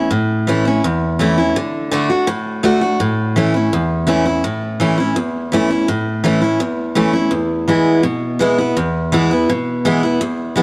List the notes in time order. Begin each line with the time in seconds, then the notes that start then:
Already playing: C#4 E4
0.11 A2
0.47 E3 A3 C#4 E4
0.65 C#4 E4
0.84 E2
1.19 E3 A3 C#4 E4
1.38 C#4 E4
1.56 D3
1.91 D3 A3 D4 F#4
2.10 D4 F#4
2.27 A2
2.63 D3 A3 D4 F#4
2.81 D4 F#4
3.00 A2
3.36 E3 A3 C#4 E4
3.54 C#4 E4
3.73 E2
4.07 E3 A3 C#4 E4
4.26 C#4 E4
4.44 A2
4.80 E3 A3 C#4 E4
4.98 C#4 E4
5.16 E2
5.52 E3 A3 C#4 E4
5.70 C#4 E4
5.88 A2
6.24 E3 A3 C#4 E4
6.41 C#4 E4
6.60 E2
6.95 E3 A3 C#4 E4
7.13 C#4 E4
7.31 E2
7.68 E3 G#3 B3 E4
8.03 B2
8.39 E3 G#3 B3 E4
8.58 B3 E4
8.77 E2
9.12 E3 G#3 B3 E4
9.31 B3 E4
9.49 B2
9.85 E3 G#3 B3 E4
10.03 B3 E4
10.21 E2
10.56 E3 G#3 B3 E4